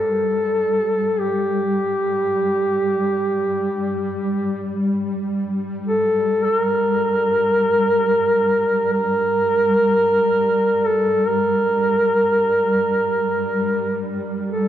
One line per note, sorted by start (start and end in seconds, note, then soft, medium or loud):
0.00 1.22 A4 medium
0.07 14.68 G3 soft
1.20 4.69 G4 medium
5.87 6.44 A4 medium
6.44 6.56 A4 medium
6.56 8.93 A#4 medium
8.93 10.88 A#4 medium
10.86 11.29 A4 medium
11.28 14.15 A#4 medium
14.49 14.68 A4 medium